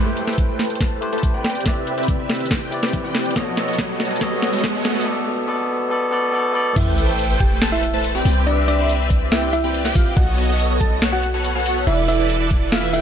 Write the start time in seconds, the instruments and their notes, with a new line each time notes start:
Already playing: analog polysynth A3 A4 B4 C5 G5, tine electric piano A3 E4 G4 B4 C5, riser
0.17 closed hi-hat
0.27 analog polysynth A3 A4 B4 C5 G5, snare, closed hi-hat
0.33 closed hi-hat
0.38 kick, closed hi-hat
0.49 analog polysynth A3 A4 B4 C5 G5
0.59 snare, closed hi-hat
0.65 closed hi-hat
0.70 closed hi-hat
0.75 closed hi-hat
0.81 analog polysynth A3 A4 B4 C5 A5, kick, snare, closed hi-hat
1.01 tine electric piano A3 E4 G4 B4 C5, closed hi-hat
1.13 analog polysynth A3 A4 B4 C5 A5, closed hi-hat
1.18 closed hi-hat
1.23 kick, closed hi-hat
1.34 analog polysynth C4 G4 B4 D5 G5
1.44 snare, closed hi-hat
1.50 closed hi-hat
1.55 closed hi-hat
1.60 tine electric piano C3, closed hi-hat
1.65 tine electric piano C4 E4 B4 D5, analog polysynth C4 G4 B4 D5 E5, kick, snare, closed hi-hat
1.87 closed hi-hat
1.98 analog polysynth C4 G4 B4 D5 E5, closed hi-hat
2.03 closed hi-hat
2.08 kick, closed hi-hat
2.19 analog polysynth C4 G4 B4 D5 E5
2.30 snare, closed hi-hat
2.35 closed hi-hat
2.40 closed hi-hat
2.46 closed hi-hat
2.51 analog polysynth C4 G4 B4 D5 G5, kick, snare, closed hi-hat
2.70 tine electric piano C3 C4 E4 B4, closed hi-hat
2.74 tine electric piano D5
2.83 analog polysynth C4 G4 B4 D5 G5, snare, closed hi-hat
2.88 closed hi-hat
2.93 kick, closed hi-hat
3.04 analog polysynth C4 G4 B4 D5 G5
3.15 snare, closed hi-hat
3.20 closed hi-hat
3.25 closed hi-hat
3.31 tine electric piano B2, closed hi-hat
3.35 tine electric piano B3 A4 C#5 D#5, analog polysynth B3 F#4 A4 C#5 D#5, kick, snare, closed hi-hat
3.57 snare, closed hi-hat
3.68 analog polysynth B3 F#4 A4 C#5 D#5, closed hi-hat
3.73 closed hi-hat
3.78 kick, snare, closed hi-hat
3.89 analog polysynth B3 F#4 A4 C#5 D#5
4.00 snare, closed hi-hat
4.05 closed hi-hat
4.11 closed hi-hat
4.16 tine electric piano B2, closed hi-hat
4.20 tine electric piano B3 A4 C#5 D#5, analog polysynth B3 F#4 A4 C#5 D#5, kick, snare, closed hi-hat
4.42 snare, closed hi-hat
4.53 analog polysynth B3 F#4 A4 C#5 D#5, closed hi-hat
4.58 closed hi-hat
4.64 kick, snare, closed hi-hat
4.74 analog polysynth B3 F#4 A4 C#5 D#5
4.85 snare, closed hi-hat
4.90 closed hi-hat
4.96 closed hi-hat
5.01 tine electric piano B2, closed hi-hat
5.05 tine electric piano B3 A4 D5
5.47 tine electric piano B2 B3 A4 D5
5.89 tine electric piano B2 B3 A4 D5
6.11 tine electric piano B2 B3 A4 D5
6.32 tine electric piano B2 B3 A4 D5
6.53 tine electric piano B2 B3 A4 D5
6.76 808-style bass A1, analog polysynth A3 A4 B4 C5 G5, synth pluck E4 E5, digital synth lead G5, kick, closed hi-hat, crash, sub drop
6.98 closed hi-hat
7.08 analog polysynth A3 A4 B4 C5 G5, digital synth lead G5
7.19 closed hi-hat
7.30 analog polysynth A3 A4 B4 C5 G5, digital synth lead G5
7.40 synth pluck G4 G5, kick, closed hi-hat
7.62 analog polysynth A3 A4 B4 C5 A5, digital synth lead A5, snare, closed hi-hat
7.72 synth pluck E4 E5
7.83 closed hi-hat
7.93 analog polysynth A3 A4 B4 C5 A5, digital synth lead A5
8.04 closed hi-hat
8.15 analog polysynth C4 G4 B4 D5 G5, digital synth lead G5
8.25 808-style bass C2, open hi-hat
8.47 analog polysynth C4 G4 B4 D5 E5, synth pluck D4 D5, digital synth lead E5, closed hi-hat
8.68 synth pluck D4 D5, closed hi-hat
8.78 analog polysynth C4 G4 B4 D5 E5, digital synth lead E5
8.89 closed hi-hat
9.00 analog polysynth C4 G4 B4 D5 E5, digital synth lead E5
9.10 kick, closed hi-hat
9.32 analog polysynth C4 G4 B4 D5 G5, synth pluck E4 E5, digital synth lead G5, snare, closed hi-hat
9.53 synth pluck E4 E5, closed hi-hat
9.64 analog polysynth C4 G4 B4 D5 G5, digital synth lead G5
9.74 closed hi-hat
9.85 analog polysynth C4 G4 B4 D5 G5, digital synth lead G5, snare
9.95 synth pluck F4 F5, kick, open hi-hat
10.17 808-style bass B1, analog polysynth B3 F#4 A4 C#5 D#5, synth pluck F#4 F#5, digital synth lead D#5, kick, closed hi-hat
10.38 closed hi-hat
10.49 analog polysynth B3 F#4 A4 C#5 D#5, digital synth lead D#5
10.59 closed hi-hat
10.70 analog polysynth B3 F#4 A4 C#5 D#5, digital synth lead D#5
10.81 synth pluck A4 A5, kick, closed hi-hat
11.02 analog polysynth B3 F#4 A4 C#5 F#5, digital synth lead F#5, snare, closed hi-hat
11.13 synth pluck F#4 F#5
11.23 closed hi-hat
11.34 analog polysynth B3 F#4 A4 C#5 F#5, digital synth lead F#5
11.45 closed hi-hat
11.55 analog polysynth B3 F#4 A4 C#5 F#5, digital synth lead F#5
11.66 open hi-hat
11.87 808-style bass E1, analog polysynth E3 E4 A4 B4 D5, synth pluck E4 E5, digital synth lead D5, closed hi-hat
12.08 synth pluck E4 E5, closed hi-hat
12.19 analog polysynth E3 E4 A4 B4 D5, digital synth lead D5
12.30 closed hi-hat
12.40 analog polysynth E3 E4 A4 B4 D5, digital synth lead D5
12.51 kick, closed hi-hat
12.72 analog polysynth E3 E4 A4 B4 E5, synth pluck F4 F5, digital synth lead E5, snare, closed hi-hat
12.93 analog polysynth E3 E4 A4 B4 G5, synth pluck E4 E5, digital synth lead G5, closed hi-hat